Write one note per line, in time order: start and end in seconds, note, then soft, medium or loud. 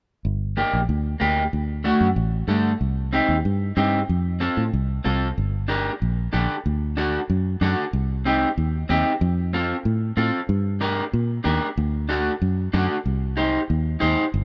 0.25 0.63 G1 medium
0.57 0.79 A#3 medium
0.57 0.79 D4 medium
0.57 0.80 G4 medium
0.73 0.86 A#1 medium
0.89 1.14 D2 medium
1.20 1.47 D2 medium
1.20 1.43 A#3 medium
1.20 1.43 D4 medium
1.20 1.43 G4 medium
1.53 1.91 D2 medium
1.84 2.07 A3 medium
1.84 2.07 D4 medium
1.84 2.08 F#4 medium
2.01 2.13 F#2 medium
2.16 2.42 A1 medium
2.48 2.74 G2 medium
2.48 2.71 A3 medium
2.48 2.71 D4 medium
2.48 2.71 A4 medium
2.81 3.19 C2 medium
3.13 3.35 C4 medium
3.13 3.35 D#4 medium
3.13 3.36 G4 medium
3.29 3.42 D#2 medium
3.45 3.71 G2 medium
3.77 4.02 G2 medium
3.77 3.99 C4 medium
3.77 4.00 D#4 medium
3.77 4.00 G4 medium
4.09 4.48 F2 medium
4.40 4.63 C4 medium
4.40 4.63 F4 medium
4.40 4.63 A4 medium
4.57 4.70 A2 medium
4.73 4.99 C2 medium
5.04 5.31 C2 medium
5.04 5.27 C4 medium
5.04 5.27 F4 medium
5.04 5.28 A4 medium
5.38 5.89 G1 medium
5.68 5.91 D4 medium
5.68 5.91 G4 medium
5.68 5.91 A#4 medium
6.02 6.27 A#1 medium
6.33 6.46 A#1 medium
6.33 6.55 D4 medium
6.33 6.56 G4 medium
6.33 6.56 A4 medium
6.66 7.17 D2 medium
6.97 7.19 D4 medium
6.97 7.20 F#4 medium
6.97 7.20 A4 medium
7.30 7.55 F#2 medium
7.61 7.74 F#2 medium
7.61 7.84 D4 medium
7.61 7.84 F#4 medium
7.61 7.84 A4 medium
7.93 8.44 C2 medium
8.25 8.48 C4 medium
8.25 8.48 D#4 medium
8.25 8.48 G4 medium
8.57 8.83 D#2 medium
8.89 9.02 D#2 medium
8.89 9.12 C4 medium
8.89 9.12 D#4 medium
8.89 9.12 G4 medium
9.21 9.72 F2 loud
9.53 9.76 C4 medium
9.53 9.76 F4 medium
9.53 9.76 A4 medium
9.85 10.11 A2 medium
10.17 10.30 A2 medium
10.17 10.39 C4 medium
10.17 10.40 F4 medium
10.17 10.40 A4 medium
10.49 11.00 G2 loud
10.81 11.03 D4 medium
10.81 11.04 G4 medium
10.81 11.04 A#4 medium
11.13 11.39 A#2 medium
11.44 11.58 D#2 medium
11.44 11.67 D4 medium
11.44 11.67 G4 medium
11.44 11.68 A#4 medium
11.77 12.29 D2 loud
12.09 12.32 D4 medium
12.09 12.32 F#4 medium
12.09 12.32 A4 medium
12.42 12.67 F#2 medium
12.73 12.87 F#2 medium
12.73 12.96 D4 medium
12.73 12.96 F#4 medium
12.73 12.96 A4 medium
13.06 13.57 C2 medium
13.37 13.60 D#4 medium
13.37 13.60 G4 medium
13.37 13.60 C5 medium
13.70 13.96 D#2 medium
14.00 14.15 D#2 medium
14.00 14.24 D#4 medium
14.00 14.24 G4 medium
14.00 14.24 C5 medium
14.34 14.44 G1 loud